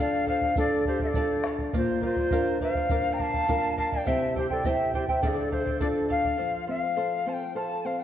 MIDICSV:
0, 0, Header, 1, 7, 480
1, 0, Start_track
1, 0, Key_signature, -1, "minor"
1, 0, Tempo, 581959
1, 1431, Time_signature, 4, 2, 24, 8
1, 6629, End_track
2, 0, Start_track
2, 0, Title_t, "Quena"
2, 0, Program_c, 0, 77
2, 0, Note_on_c, 0, 77, 88
2, 227, Note_off_c, 0, 77, 0
2, 232, Note_on_c, 0, 77, 78
2, 454, Note_off_c, 0, 77, 0
2, 479, Note_on_c, 0, 74, 86
2, 698, Note_off_c, 0, 74, 0
2, 718, Note_on_c, 0, 72, 82
2, 826, Note_off_c, 0, 72, 0
2, 847, Note_on_c, 0, 76, 72
2, 881, Note_on_c, 0, 74, 78
2, 889, Note_off_c, 0, 76, 0
2, 1175, Note_off_c, 0, 74, 0
2, 1446, Note_on_c, 0, 72, 84
2, 1662, Note_off_c, 0, 72, 0
2, 1685, Note_on_c, 0, 72, 84
2, 2125, Note_off_c, 0, 72, 0
2, 2164, Note_on_c, 0, 77, 96
2, 2579, Note_on_c, 0, 82, 77
2, 2592, Note_off_c, 0, 77, 0
2, 2642, Note_on_c, 0, 81, 111
2, 2654, Note_off_c, 0, 82, 0
2, 3110, Note_off_c, 0, 81, 0
2, 3115, Note_on_c, 0, 81, 95
2, 3225, Note_off_c, 0, 81, 0
2, 3237, Note_on_c, 0, 79, 89
2, 3354, Note_on_c, 0, 76, 92
2, 3367, Note_off_c, 0, 79, 0
2, 3593, Note_off_c, 0, 76, 0
2, 3606, Note_on_c, 0, 72, 75
2, 3711, Note_off_c, 0, 72, 0
2, 3722, Note_on_c, 0, 74, 76
2, 3842, Note_on_c, 0, 76, 85
2, 3854, Note_off_c, 0, 74, 0
2, 4067, Note_off_c, 0, 76, 0
2, 4072, Note_on_c, 0, 72, 75
2, 4183, Note_off_c, 0, 72, 0
2, 4192, Note_on_c, 0, 76, 79
2, 4303, Note_off_c, 0, 76, 0
2, 4317, Note_on_c, 0, 76, 73
2, 4349, Note_on_c, 0, 74, 79
2, 4358, Note_off_c, 0, 76, 0
2, 4537, Note_off_c, 0, 74, 0
2, 4547, Note_on_c, 0, 72, 78
2, 4772, Note_off_c, 0, 72, 0
2, 4788, Note_on_c, 0, 74, 83
2, 4842, Note_off_c, 0, 74, 0
2, 5038, Note_on_c, 0, 77, 95
2, 5481, Note_off_c, 0, 77, 0
2, 5517, Note_on_c, 0, 77, 86
2, 6004, Note_on_c, 0, 81, 75
2, 6016, Note_off_c, 0, 77, 0
2, 6043, Note_on_c, 0, 79, 82
2, 6051, Note_off_c, 0, 81, 0
2, 6233, Note_off_c, 0, 79, 0
2, 6238, Note_on_c, 0, 81, 92
2, 6477, Note_on_c, 0, 77, 82
2, 6490, Note_off_c, 0, 81, 0
2, 6591, Note_on_c, 0, 79, 77
2, 6604, Note_off_c, 0, 77, 0
2, 6629, Note_off_c, 0, 79, 0
2, 6629, End_track
3, 0, Start_track
3, 0, Title_t, "Charango"
3, 0, Program_c, 1, 24
3, 0, Note_on_c, 1, 69, 80
3, 0, Note_on_c, 1, 74, 82
3, 0, Note_on_c, 1, 77, 79
3, 209, Note_off_c, 1, 69, 0
3, 219, Note_off_c, 1, 74, 0
3, 219, Note_on_c, 1, 69, 70
3, 225, Note_off_c, 1, 77, 0
3, 229, Note_on_c, 1, 74, 71
3, 235, Note_on_c, 1, 77, 67
3, 337, Note_off_c, 1, 77, 0
3, 344, Note_off_c, 1, 69, 0
3, 347, Note_on_c, 1, 77, 52
3, 349, Note_off_c, 1, 74, 0
3, 358, Note_on_c, 1, 74, 43
3, 468, Note_off_c, 1, 74, 0
3, 468, Note_off_c, 1, 77, 0
3, 473, Note_on_c, 1, 69, 77
3, 478, Note_on_c, 1, 74, 70
3, 483, Note_on_c, 1, 77, 84
3, 703, Note_off_c, 1, 69, 0
3, 711, Note_off_c, 1, 74, 0
3, 713, Note_on_c, 1, 69, 49
3, 714, Note_off_c, 1, 77, 0
3, 721, Note_on_c, 1, 74, 58
3, 724, Note_on_c, 1, 77, 59
3, 817, Note_off_c, 1, 77, 0
3, 827, Note_on_c, 1, 77, 57
3, 830, Note_off_c, 1, 74, 0
3, 831, Note_off_c, 1, 69, 0
3, 840, Note_on_c, 1, 74, 49
3, 948, Note_off_c, 1, 74, 0
3, 948, Note_off_c, 1, 77, 0
3, 952, Note_on_c, 1, 69, 73
3, 958, Note_on_c, 1, 74, 84
3, 961, Note_on_c, 1, 77, 83
3, 1186, Note_off_c, 1, 69, 0
3, 1190, Note_off_c, 1, 74, 0
3, 1196, Note_off_c, 1, 77, 0
3, 1196, Note_on_c, 1, 69, 64
3, 1200, Note_on_c, 1, 74, 62
3, 1206, Note_on_c, 1, 77, 68
3, 1300, Note_off_c, 1, 77, 0
3, 1310, Note_off_c, 1, 74, 0
3, 1310, Note_on_c, 1, 77, 54
3, 1313, Note_off_c, 1, 69, 0
3, 1320, Note_on_c, 1, 74, 45
3, 1425, Note_off_c, 1, 74, 0
3, 1427, Note_off_c, 1, 77, 0
3, 1428, Note_on_c, 1, 70, 76
3, 1435, Note_on_c, 1, 74, 75
3, 1437, Note_on_c, 1, 77, 84
3, 1651, Note_off_c, 1, 70, 0
3, 1661, Note_off_c, 1, 74, 0
3, 1661, Note_on_c, 1, 70, 59
3, 1666, Note_off_c, 1, 77, 0
3, 1671, Note_on_c, 1, 74, 68
3, 1676, Note_on_c, 1, 77, 65
3, 1776, Note_off_c, 1, 77, 0
3, 1782, Note_off_c, 1, 74, 0
3, 1786, Note_off_c, 1, 70, 0
3, 1786, Note_on_c, 1, 77, 54
3, 1798, Note_on_c, 1, 74, 39
3, 1905, Note_off_c, 1, 74, 0
3, 1908, Note_on_c, 1, 70, 81
3, 1909, Note_off_c, 1, 77, 0
3, 1915, Note_on_c, 1, 74, 84
3, 1917, Note_on_c, 1, 77, 82
3, 2144, Note_off_c, 1, 70, 0
3, 2149, Note_off_c, 1, 74, 0
3, 2154, Note_off_c, 1, 77, 0
3, 2154, Note_on_c, 1, 70, 68
3, 2159, Note_on_c, 1, 74, 71
3, 2165, Note_on_c, 1, 77, 73
3, 2265, Note_off_c, 1, 77, 0
3, 2271, Note_off_c, 1, 74, 0
3, 2273, Note_off_c, 1, 70, 0
3, 2275, Note_on_c, 1, 77, 55
3, 2286, Note_on_c, 1, 74, 44
3, 2391, Note_off_c, 1, 74, 0
3, 2393, Note_off_c, 1, 77, 0
3, 2396, Note_on_c, 1, 70, 73
3, 2401, Note_on_c, 1, 74, 79
3, 2404, Note_on_c, 1, 77, 77
3, 2619, Note_off_c, 1, 70, 0
3, 2625, Note_off_c, 1, 74, 0
3, 2627, Note_off_c, 1, 77, 0
3, 2629, Note_on_c, 1, 70, 57
3, 2634, Note_on_c, 1, 74, 60
3, 2637, Note_on_c, 1, 77, 60
3, 2737, Note_off_c, 1, 77, 0
3, 2743, Note_off_c, 1, 74, 0
3, 2747, Note_on_c, 1, 77, 57
3, 2750, Note_off_c, 1, 70, 0
3, 2760, Note_on_c, 1, 74, 46
3, 2868, Note_off_c, 1, 74, 0
3, 2869, Note_off_c, 1, 77, 0
3, 2872, Note_on_c, 1, 70, 72
3, 2878, Note_on_c, 1, 74, 78
3, 2883, Note_on_c, 1, 77, 92
3, 3102, Note_off_c, 1, 70, 0
3, 3107, Note_off_c, 1, 74, 0
3, 3110, Note_off_c, 1, 77, 0
3, 3112, Note_on_c, 1, 70, 61
3, 3117, Note_on_c, 1, 74, 63
3, 3120, Note_on_c, 1, 77, 68
3, 3224, Note_off_c, 1, 77, 0
3, 3230, Note_off_c, 1, 74, 0
3, 3232, Note_off_c, 1, 70, 0
3, 3234, Note_on_c, 1, 77, 57
3, 3243, Note_on_c, 1, 74, 45
3, 3349, Note_off_c, 1, 77, 0
3, 3352, Note_on_c, 1, 67, 75
3, 3353, Note_on_c, 1, 76, 82
3, 3355, Note_off_c, 1, 74, 0
3, 3357, Note_on_c, 1, 64, 90
3, 3359, Note_on_c, 1, 72, 78
3, 3360, Note_on_c, 1, 79, 92
3, 3577, Note_off_c, 1, 76, 0
3, 3584, Note_off_c, 1, 64, 0
3, 3587, Note_off_c, 1, 79, 0
3, 3587, Note_on_c, 1, 76, 61
3, 3588, Note_off_c, 1, 72, 0
3, 3592, Note_off_c, 1, 67, 0
3, 3594, Note_on_c, 1, 64, 55
3, 3597, Note_on_c, 1, 79, 68
3, 3598, Note_on_c, 1, 72, 55
3, 3706, Note_off_c, 1, 79, 0
3, 3709, Note_off_c, 1, 76, 0
3, 3710, Note_off_c, 1, 72, 0
3, 3712, Note_off_c, 1, 64, 0
3, 3716, Note_on_c, 1, 79, 54
3, 3720, Note_on_c, 1, 72, 46
3, 3728, Note_on_c, 1, 64, 42
3, 3832, Note_off_c, 1, 64, 0
3, 3833, Note_off_c, 1, 79, 0
3, 3834, Note_off_c, 1, 72, 0
3, 3837, Note_on_c, 1, 67, 66
3, 3839, Note_on_c, 1, 76, 81
3, 3842, Note_on_c, 1, 64, 77
3, 3844, Note_on_c, 1, 72, 84
3, 3845, Note_on_c, 1, 79, 79
3, 4062, Note_off_c, 1, 76, 0
3, 4070, Note_off_c, 1, 64, 0
3, 4072, Note_off_c, 1, 72, 0
3, 4072, Note_on_c, 1, 76, 59
3, 4074, Note_off_c, 1, 67, 0
3, 4074, Note_off_c, 1, 79, 0
3, 4080, Note_on_c, 1, 64, 65
3, 4082, Note_on_c, 1, 72, 60
3, 4084, Note_on_c, 1, 79, 69
3, 4187, Note_off_c, 1, 79, 0
3, 4190, Note_off_c, 1, 72, 0
3, 4192, Note_off_c, 1, 76, 0
3, 4195, Note_off_c, 1, 64, 0
3, 4197, Note_on_c, 1, 79, 48
3, 4200, Note_on_c, 1, 72, 44
3, 4206, Note_on_c, 1, 64, 37
3, 4305, Note_off_c, 1, 64, 0
3, 4308, Note_on_c, 1, 69, 72
3, 4309, Note_off_c, 1, 72, 0
3, 4313, Note_on_c, 1, 74, 81
3, 4314, Note_off_c, 1, 79, 0
3, 4318, Note_on_c, 1, 77, 86
3, 4538, Note_off_c, 1, 69, 0
3, 4542, Note_off_c, 1, 74, 0
3, 4546, Note_off_c, 1, 77, 0
3, 4548, Note_on_c, 1, 69, 51
3, 4552, Note_on_c, 1, 74, 55
3, 4556, Note_on_c, 1, 77, 59
3, 4656, Note_off_c, 1, 77, 0
3, 4666, Note_on_c, 1, 77, 53
3, 4667, Note_off_c, 1, 74, 0
3, 4669, Note_off_c, 1, 69, 0
3, 4677, Note_on_c, 1, 74, 43
3, 4780, Note_off_c, 1, 74, 0
3, 4785, Note_off_c, 1, 77, 0
3, 4786, Note_on_c, 1, 69, 79
3, 4789, Note_on_c, 1, 74, 84
3, 4795, Note_on_c, 1, 77, 76
3, 5010, Note_off_c, 1, 69, 0
3, 5015, Note_off_c, 1, 74, 0
3, 5020, Note_on_c, 1, 69, 70
3, 5021, Note_off_c, 1, 77, 0
3, 5025, Note_on_c, 1, 74, 74
3, 5031, Note_on_c, 1, 77, 73
3, 5132, Note_off_c, 1, 77, 0
3, 5141, Note_off_c, 1, 74, 0
3, 5142, Note_on_c, 1, 77, 55
3, 5145, Note_off_c, 1, 69, 0
3, 5151, Note_on_c, 1, 74, 48
3, 5254, Note_off_c, 1, 74, 0
3, 5255, Note_off_c, 1, 77, 0
3, 5257, Note_on_c, 1, 69, 66
3, 5263, Note_on_c, 1, 72, 79
3, 5265, Note_on_c, 1, 77, 77
3, 5492, Note_off_c, 1, 69, 0
3, 5496, Note_off_c, 1, 72, 0
3, 5502, Note_on_c, 1, 69, 54
3, 5504, Note_off_c, 1, 77, 0
3, 5506, Note_on_c, 1, 72, 57
3, 5514, Note_on_c, 1, 77, 66
3, 5612, Note_off_c, 1, 77, 0
3, 5618, Note_off_c, 1, 72, 0
3, 5622, Note_on_c, 1, 77, 45
3, 5626, Note_off_c, 1, 69, 0
3, 5633, Note_on_c, 1, 72, 41
3, 5739, Note_off_c, 1, 72, 0
3, 5741, Note_off_c, 1, 77, 0
3, 5745, Note_on_c, 1, 69, 72
3, 5749, Note_on_c, 1, 72, 71
3, 5751, Note_on_c, 1, 77, 74
3, 5982, Note_off_c, 1, 69, 0
3, 5989, Note_off_c, 1, 72, 0
3, 5990, Note_off_c, 1, 77, 0
3, 5992, Note_on_c, 1, 69, 56
3, 5999, Note_on_c, 1, 72, 58
3, 6002, Note_on_c, 1, 77, 64
3, 6101, Note_off_c, 1, 77, 0
3, 6108, Note_off_c, 1, 72, 0
3, 6111, Note_off_c, 1, 69, 0
3, 6111, Note_on_c, 1, 77, 46
3, 6120, Note_on_c, 1, 72, 34
3, 6226, Note_off_c, 1, 72, 0
3, 6230, Note_on_c, 1, 69, 67
3, 6231, Note_off_c, 1, 77, 0
3, 6235, Note_on_c, 1, 72, 71
3, 6239, Note_on_c, 1, 77, 74
3, 6464, Note_off_c, 1, 69, 0
3, 6470, Note_off_c, 1, 72, 0
3, 6473, Note_on_c, 1, 69, 50
3, 6474, Note_off_c, 1, 77, 0
3, 6480, Note_on_c, 1, 72, 52
3, 6487, Note_on_c, 1, 77, 52
3, 6578, Note_off_c, 1, 77, 0
3, 6584, Note_off_c, 1, 72, 0
3, 6588, Note_on_c, 1, 77, 51
3, 6592, Note_off_c, 1, 69, 0
3, 6599, Note_on_c, 1, 72, 38
3, 6629, Note_off_c, 1, 72, 0
3, 6629, Note_off_c, 1, 77, 0
3, 6629, End_track
4, 0, Start_track
4, 0, Title_t, "Pan flute"
4, 0, Program_c, 2, 75
4, 0, Note_on_c, 2, 74, 77
4, 231, Note_off_c, 2, 74, 0
4, 234, Note_on_c, 2, 72, 72
4, 456, Note_off_c, 2, 72, 0
4, 473, Note_on_c, 2, 69, 77
4, 695, Note_off_c, 2, 69, 0
4, 719, Note_on_c, 2, 67, 66
4, 827, Note_off_c, 2, 67, 0
4, 848, Note_on_c, 2, 69, 67
4, 1175, Note_off_c, 2, 69, 0
4, 1446, Note_on_c, 2, 65, 70
4, 1662, Note_off_c, 2, 65, 0
4, 1677, Note_on_c, 2, 65, 81
4, 2121, Note_off_c, 2, 65, 0
4, 2151, Note_on_c, 2, 72, 83
4, 2572, Note_on_c, 2, 79, 62
4, 2585, Note_off_c, 2, 72, 0
4, 2645, Note_on_c, 2, 77, 91
4, 2657, Note_off_c, 2, 79, 0
4, 3110, Note_off_c, 2, 77, 0
4, 3115, Note_on_c, 2, 77, 75
4, 3225, Note_off_c, 2, 77, 0
4, 3238, Note_on_c, 2, 74, 76
4, 3353, Note_on_c, 2, 72, 77
4, 3365, Note_off_c, 2, 74, 0
4, 3588, Note_off_c, 2, 72, 0
4, 3593, Note_on_c, 2, 67, 73
4, 3704, Note_off_c, 2, 67, 0
4, 3716, Note_on_c, 2, 69, 67
4, 3840, Note_on_c, 2, 72, 67
4, 3852, Note_off_c, 2, 69, 0
4, 4062, Note_off_c, 2, 72, 0
4, 4067, Note_on_c, 2, 67, 67
4, 4180, Note_off_c, 2, 67, 0
4, 4191, Note_on_c, 2, 72, 69
4, 4303, Note_off_c, 2, 72, 0
4, 4322, Note_on_c, 2, 69, 69
4, 5003, Note_off_c, 2, 69, 0
4, 6629, End_track
5, 0, Start_track
5, 0, Title_t, "Nylon-string guitar"
5, 0, Program_c, 3, 24
5, 0, Note_on_c, 3, 50, 63
5, 0, Note_on_c, 3, 62, 49
5, 0, Note_on_c, 3, 65, 47
5, 0, Note_on_c, 3, 69, 53
5, 456, Note_off_c, 3, 62, 0
5, 459, Note_off_c, 3, 65, 0
5, 459, Note_off_c, 3, 69, 0
5, 471, Note_on_c, 3, 62, 48
5, 474, Note_on_c, 3, 65, 46
5, 479, Note_on_c, 3, 69, 54
5, 937, Note_off_c, 3, 62, 0
5, 939, Note_off_c, 3, 65, 0
5, 940, Note_off_c, 3, 69, 0
5, 952, Note_on_c, 3, 62, 48
5, 953, Note_on_c, 3, 65, 44
5, 957, Note_on_c, 3, 69, 54
5, 1398, Note_off_c, 3, 50, 0
5, 1417, Note_off_c, 3, 65, 0
5, 1418, Note_off_c, 3, 62, 0
5, 1420, Note_off_c, 3, 69, 0
5, 1435, Note_on_c, 3, 46, 63
5, 1915, Note_on_c, 3, 62, 51
5, 1920, Note_on_c, 3, 65, 44
5, 1921, Note_on_c, 3, 70, 57
5, 2379, Note_off_c, 3, 62, 0
5, 2381, Note_off_c, 3, 65, 0
5, 2382, Note_off_c, 3, 70, 0
5, 2398, Note_on_c, 3, 62, 49
5, 2400, Note_on_c, 3, 65, 43
5, 2404, Note_on_c, 3, 70, 55
5, 2861, Note_off_c, 3, 62, 0
5, 2861, Note_off_c, 3, 65, 0
5, 2863, Note_off_c, 3, 70, 0
5, 2877, Note_on_c, 3, 62, 50
5, 2881, Note_on_c, 3, 65, 46
5, 2883, Note_on_c, 3, 70, 56
5, 3320, Note_off_c, 3, 46, 0
5, 3340, Note_off_c, 3, 62, 0
5, 3341, Note_off_c, 3, 65, 0
5, 3343, Note_off_c, 3, 70, 0
5, 3358, Note_on_c, 3, 48, 69
5, 3839, Note_on_c, 3, 60, 49
5, 3843, Note_on_c, 3, 64, 41
5, 3846, Note_on_c, 3, 67, 50
5, 4286, Note_off_c, 3, 48, 0
5, 4301, Note_off_c, 3, 60, 0
5, 4302, Note_off_c, 3, 64, 0
5, 4304, Note_off_c, 3, 67, 0
5, 4316, Note_on_c, 3, 50, 63
5, 4794, Note_on_c, 3, 62, 48
5, 4801, Note_on_c, 3, 65, 39
5, 4803, Note_on_c, 3, 69, 54
5, 5244, Note_off_c, 3, 50, 0
5, 5258, Note_off_c, 3, 62, 0
5, 5260, Note_off_c, 3, 65, 0
5, 5262, Note_off_c, 3, 69, 0
5, 5277, Note_on_c, 3, 53, 57
5, 5513, Note_on_c, 3, 60, 49
5, 5744, Note_off_c, 3, 60, 0
5, 5752, Note_on_c, 3, 69, 51
5, 5984, Note_off_c, 3, 69, 0
5, 5991, Note_on_c, 3, 60, 47
5, 6223, Note_off_c, 3, 60, 0
5, 6229, Note_on_c, 3, 69, 49
5, 6462, Note_off_c, 3, 69, 0
5, 6473, Note_on_c, 3, 60, 46
5, 6629, Note_off_c, 3, 53, 0
5, 6629, Note_off_c, 3, 60, 0
5, 6629, End_track
6, 0, Start_track
6, 0, Title_t, "Bombo"
6, 221, Note_on_c, 9, 43, 54
6, 303, Note_off_c, 9, 43, 0
6, 341, Note_on_c, 9, 43, 59
6, 424, Note_off_c, 9, 43, 0
6, 460, Note_on_c, 9, 43, 83
6, 542, Note_off_c, 9, 43, 0
6, 702, Note_on_c, 9, 43, 62
6, 784, Note_off_c, 9, 43, 0
6, 821, Note_on_c, 9, 43, 67
6, 904, Note_off_c, 9, 43, 0
6, 941, Note_on_c, 9, 43, 80
6, 1023, Note_off_c, 9, 43, 0
6, 1185, Note_on_c, 9, 37, 63
6, 1268, Note_off_c, 9, 37, 0
6, 1307, Note_on_c, 9, 43, 60
6, 1389, Note_off_c, 9, 43, 0
6, 1429, Note_on_c, 9, 43, 78
6, 1512, Note_off_c, 9, 43, 0
6, 1665, Note_on_c, 9, 43, 58
6, 1747, Note_off_c, 9, 43, 0
6, 1783, Note_on_c, 9, 43, 59
6, 1866, Note_off_c, 9, 43, 0
6, 1902, Note_on_c, 9, 43, 83
6, 1985, Note_off_c, 9, 43, 0
6, 2146, Note_on_c, 9, 43, 57
6, 2229, Note_off_c, 9, 43, 0
6, 2266, Note_on_c, 9, 43, 61
6, 2349, Note_off_c, 9, 43, 0
6, 2387, Note_on_c, 9, 43, 88
6, 2470, Note_off_c, 9, 43, 0
6, 2632, Note_on_c, 9, 43, 64
6, 2715, Note_off_c, 9, 43, 0
6, 2753, Note_on_c, 9, 43, 60
6, 2835, Note_off_c, 9, 43, 0
6, 2878, Note_on_c, 9, 43, 79
6, 2961, Note_off_c, 9, 43, 0
6, 3114, Note_on_c, 9, 43, 56
6, 3197, Note_off_c, 9, 43, 0
6, 3235, Note_on_c, 9, 43, 64
6, 3318, Note_off_c, 9, 43, 0
6, 3354, Note_on_c, 9, 43, 72
6, 3436, Note_off_c, 9, 43, 0
6, 3596, Note_on_c, 9, 43, 56
6, 3679, Note_off_c, 9, 43, 0
6, 3712, Note_on_c, 9, 43, 53
6, 3794, Note_off_c, 9, 43, 0
6, 3830, Note_on_c, 9, 43, 76
6, 3913, Note_off_c, 9, 43, 0
6, 4072, Note_on_c, 9, 43, 56
6, 4155, Note_off_c, 9, 43, 0
6, 4192, Note_on_c, 9, 43, 59
6, 4274, Note_off_c, 9, 43, 0
6, 4313, Note_on_c, 9, 43, 83
6, 4396, Note_off_c, 9, 43, 0
6, 4554, Note_on_c, 9, 43, 59
6, 4636, Note_off_c, 9, 43, 0
6, 4672, Note_on_c, 9, 43, 62
6, 4755, Note_off_c, 9, 43, 0
6, 4788, Note_on_c, 9, 43, 75
6, 4870, Note_off_c, 9, 43, 0
6, 5032, Note_on_c, 9, 43, 57
6, 5115, Note_off_c, 9, 43, 0
6, 5150, Note_on_c, 9, 43, 61
6, 5233, Note_off_c, 9, 43, 0
6, 6629, End_track
7, 0, Start_track
7, 0, Title_t, "Drums"
7, 463, Note_on_c, 9, 82, 89
7, 546, Note_off_c, 9, 82, 0
7, 946, Note_on_c, 9, 82, 94
7, 1029, Note_off_c, 9, 82, 0
7, 1433, Note_on_c, 9, 82, 84
7, 1515, Note_off_c, 9, 82, 0
7, 1911, Note_on_c, 9, 82, 87
7, 1994, Note_off_c, 9, 82, 0
7, 2387, Note_on_c, 9, 82, 91
7, 2470, Note_off_c, 9, 82, 0
7, 2870, Note_on_c, 9, 82, 92
7, 2953, Note_off_c, 9, 82, 0
7, 3348, Note_on_c, 9, 82, 84
7, 3430, Note_off_c, 9, 82, 0
7, 3830, Note_on_c, 9, 82, 88
7, 3912, Note_off_c, 9, 82, 0
7, 4310, Note_on_c, 9, 82, 94
7, 4392, Note_off_c, 9, 82, 0
7, 4790, Note_on_c, 9, 82, 92
7, 4872, Note_off_c, 9, 82, 0
7, 6629, End_track
0, 0, End_of_file